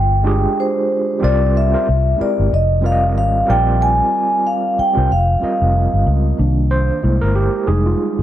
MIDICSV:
0, 0, Header, 1, 5, 480
1, 0, Start_track
1, 0, Tempo, 645161
1, 904, Time_signature, 4, 2, 24, 8
1, 6119, End_track
2, 0, Start_track
2, 0, Title_t, "Vibraphone"
2, 0, Program_c, 0, 11
2, 0, Note_on_c, 0, 79, 93
2, 447, Note_on_c, 0, 72, 78
2, 479, Note_off_c, 0, 79, 0
2, 925, Note_on_c, 0, 74, 93
2, 929, Note_off_c, 0, 72, 0
2, 1161, Note_off_c, 0, 74, 0
2, 1169, Note_on_c, 0, 76, 94
2, 1607, Note_off_c, 0, 76, 0
2, 1647, Note_on_c, 0, 74, 82
2, 1882, Note_off_c, 0, 74, 0
2, 1890, Note_on_c, 0, 75, 84
2, 2101, Note_off_c, 0, 75, 0
2, 2127, Note_on_c, 0, 77, 88
2, 2230, Note_off_c, 0, 77, 0
2, 2364, Note_on_c, 0, 77, 82
2, 2578, Note_off_c, 0, 77, 0
2, 2605, Note_on_c, 0, 79, 92
2, 2841, Note_off_c, 0, 79, 0
2, 2844, Note_on_c, 0, 80, 103
2, 3323, Note_on_c, 0, 77, 93
2, 3328, Note_off_c, 0, 80, 0
2, 3560, Note_off_c, 0, 77, 0
2, 3566, Note_on_c, 0, 79, 86
2, 3802, Note_off_c, 0, 79, 0
2, 3810, Note_on_c, 0, 77, 82
2, 4487, Note_off_c, 0, 77, 0
2, 6119, End_track
3, 0, Start_track
3, 0, Title_t, "Tine electric piano"
3, 0, Program_c, 1, 4
3, 78, Control_c, 1, 64, 127
3, 171, Note_on_c, 1, 56, 76
3, 180, Note_on_c, 1, 62, 76
3, 187, Note_on_c, 1, 65, 72
3, 195, Note_on_c, 1, 67, 76
3, 201, Note_on_c, 1, 68, 86
3, 793, Note_off_c, 1, 56, 0
3, 798, Note_off_c, 1, 62, 0
3, 801, Note_off_c, 1, 65, 0
3, 806, Note_off_c, 1, 67, 0
3, 809, Note_off_c, 1, 68, 0
3, 891, Note_on_c, 1, 55, 87
3, 899, Note_on_c, 1, 60, 80
3, 910, Note_on_c, 1, 65, 81
3, 914, Control_c, 1, 64, 0
3, 915, Note_on_c, 1, 70, 76
3, 924, Note_on_c, 1, 74, 97
3, 1065, Control_c, 1, 64, 127
3, 1206, Note_off_c, 1, 55, 0
3, 1210, Note_off_c, 1, 60, 0
3, 1215, Note_off_c, 1, 65, 0
3, 1218, Note_off_c, 1, 70, 0
3, 1222, Note_off_c, 1, 74, 0
3, 1274, Note_on_c, 1, 55, 64
3, 1281, Note_on_c, 1, 60, 57
3, 1289, Note_on_c, 1, 65, 59
3, 1295, Note_on_c, 1, 70, 62
3, 1304, Note_on_c, 1, 72, 67
3, 1380, Note_off_c, 1, 55, 0
3, 1383, Note_off_c, 1, 60, 0
3, 1387, Note_off_c, 1, 65, 0
3, 1390, Note_off_c, 1, 70, 0
3, 1394, Note_off_c, 1, 72, 0
3, 1394, Control_c, 1, 64, 0
3, 1545, Control_c, 1, 64, 127
3, 1613, Note_on_c, 1, 56, 69
3, 1620, Note_on_c, 1, 60, 61
3, 1628, Note_on_c, 1, 64, 61
3, 1636, Note_on_c, 1, 67, 56
3, 1645, Note_on_c, 1, 70, 70
3, 1858, Note_off_c, 1, 56, 0
3, 1862, Note_off_c, 1, 60, 0
3, 1866, Note_off_c, 1, 64, 0
3, 1870, Note_off_c, 1, 67, 0
3, 1872, Control_c, 1, 64, 0
3, 1874, Note_off_c, 1, 70, 0
3, 2007, Control_c, 1, 64, 127
3, 2089, Note_on_c, 1, 55, 71
3, 2099, Note_on_c, 1, 60, 68
3, 2106, Note_on_c, 1, 65, 64
3, 2115, Note_on_c, 1, 70, 66
3, 2124, Note_on_c, 1, 74, 61
3, 2170, Note_off_c, 1, 74, 0
3, 2172, Note_on_c, 1, 75, 79
3, 2560, Note_off_c, 1, 55, 0
3, 2567, Note_off_c, 1, 60, 0
3, 2569, Note_on_c, 1, 55, 73
3, 2575, Note_off_c, 1, 65, 0
3, 2576, Note_on_c, 1, 60, 73
3, 2584, Note_off_c, 1, 70, 0
3, 2584, Note_on_c, 1, 65, 68
3, 2593, Note_on_c, 1, 70, 72
3, 2595, Control_c, 1, 64, 0
3, 2601, Note_on_c, 1, 74, 83
3, 2618, Note_off_c, 1, 75, 0
3, 2704, Control_c, 1, 64, 127
3, 3385, Note_off_c, 1, 55, 0
3, 3389, Note_off_c, 1, 60, 0
3, 3393, Note_off_c, 1, 65, 0
3, 3397, Note_off_c, 1, 70, 0
3, 3401, Note_off_c, 1, 74, 0
3, 3671, Note_on_c, 1, 55, 71
3, 3678, Note_on_c, 1, 60, 63
3, 3686, Note_on_c, 1, 65, 61
3, 3694, Note_on_c, 1, 70, 59
3, 3702, Note_on_c, 1, 72, 73
3, 3778, Note_off_c, 1, 55, 0
3, 3781, Note_off_c, 1, 60, 0
3, 3786, Note_off_c, 1, 65, 0
3, 3789, Note_off_c, 1, 70, 0
3, 3792, Control_c, 1, 64, 0
3, 3794, Note_off_c, 1, 72, 0
3, 3943, Control_c, 1, 64, 127
3, 4016, Note_on_c, 1, 55, 69
3, 4024, Note_on_c, 1, 60, 58
3, 4031, Note_on_c, 1, 65, 63
3, 4039, Note_on_c, 1, 70, 58
3, 4047, Note_on_c, 1, 75, 75
3, 4636, Note_off_c, 1, 55, 0
3, 4640, Note_off_c, 1, 60, 0
3, 4643, Note_off_c, 1, 65, 0
3, 4648, Note_off_c, 1, 70, 0
3, 4651, Note_off_c, 1, 75, 0
3, 4743, Note_on_c, 1, 51, 48
3, 4747, Note_on_c, 1, 58, 43
3, 4752, Note_on_c, 1, 62, 50
3, 4753, Control_c, 1, 64, 0
3, 4884, Control_c, 1, 64, 127
3, 4992, Note_on_c, 1, 72, 89
3, 5077, Note_off_c, 1, 51, 0
3, 5079, Note_off_c, 1, 58, 0
3, 5082, Note_off_c, 1, 62, 0
3, 5225, Note_on_c, 1, 56, 50
3, 5231, Note_on_c, 1, 58, 44
3, 5233, Note_on_c, 1, 64, 57
3, 5234, Control_c, 1, 64, 0
3, 5366, Control_c, 1, 64, 127
3, 5368, Note_on_c, 1, 70, 87
3, 5378, Note_off_c, 1, 72, 0
3, 5470, Note_off_c, 1, 70, 0
3, 5472, Note_on_c, 1, 67, 76
3, 5558, Note_off_c, 1, 56, 0
3, 5561, Note_off_c, 1, 58, 0
3, 5562, Note_off_c, 1, 64, 0
3, 5704, Note_on_c, 1, 55, 51
3, 5709, Note_on_c, 1, 68, 83
3, 5710, Note_on_c, 1, 56, 47
3, 5714, Note_on_c, 1, 63, 57
3, 5715, Note_off_c, 1, 67, 0
3, 5715, Control_c, 1, 64, 0
3, 5844, Control_c, 1, 64, 127
3, 5849, Note_off_c, 1, 68, 0
3, 5849, Note_on_c, 1, 65, 70
3, 6069, Note_off_c, 1, 65, 0
3, 6119, Note_off_c, 1, 55, 0
3, 6119, Note_off_c, 1, 56, 0
3, 6119, Note_off_c, 1, 63, 0
3, 6119, End_track
4, 0, Start_track
4, 0, Title_t, "Fingered electric bass"
4, 0, Program_c, 2, 33
4, 0, Note_on_c, 2, 31, 98
4, 337, Note_off_c, 2, 31, 0
4, 920, Note_on_c, 2, 36, 115
4, 1295, Note_off_c, 2, 36, 0
4, 1404, Note_on_c, 2, 36, 94
4, 1587, Note_off_c, 2, 36, 0
4, 1781, Note_on_c, 2, 31, 82
4, 1854, Note_off_c, 2, 31, 0
4, 1880, Note_on_c, 2, 29, 95
4, 2359, Note_off_c, 2, 29, 0
4, 2359, Note_on_c, 2, 32, 85
4, 2544, Note_off_c, 2, 32, 0
4, 2601, Note_on_c, 2, 34, 90
4, 2975, Note_off_c, 2, 34, 0
4, 3699, Note_on_c, 2, 36, 78
4, 3773, Note_off_c, 2, 36, 0
4, 3800, Note_on_c, 2, 29, 95
4, 3984, Note_off_c, 2, 29, 0
4, 4179, Note_on_c, 2, 29, 91
4, 4363, Note_off_c, 2, 29, 0
4, 4416, Note_on_c, 2, 31, 76
4, 4491, Note_off_c, 2, 31, 0
4, 4512, Note_on_c, 2, 37, 90
4, 4700, Note_off_c, 2, 37, 0
4, 4755, Note_on_c, 2, 36, 102
4, 5132, Note_off_c, 2, 36, 0
4, 5238, Note_on_c, 2, 36, 94
4, 5342, Note_off_c, 2, 36, 0
4, 5375, Note_on_c, 2, 31, 77
4, 5561, Note_off_c, 2, 31, 0
4, 5713, Note_on_c, 2, 29, 95
4, 5900, Note_off_c, 2, 29, 0
4, 6092, Note_on_c, 2, 31, 90
4, 6119, Note_off_c, 2, 31, 0
4, 6119, End_track
5, 0, Start_track
5, 0, Title_t, "Muted fingered electric bass strokes"
5, 1641, Note_on_c, 9, 29, 45
5, 1716, Note_off_c, 9, 29, 0
5, 3563, Note_on_c, 9, 29, 44
5, 3638, Note_off_c, 9, 29, 0
5, 4039, Note_on_c, 9, 29, 40
5, 4114, Note_off_c, 9, 29, 0
5, 6119, End_track
0, 0, End_of_file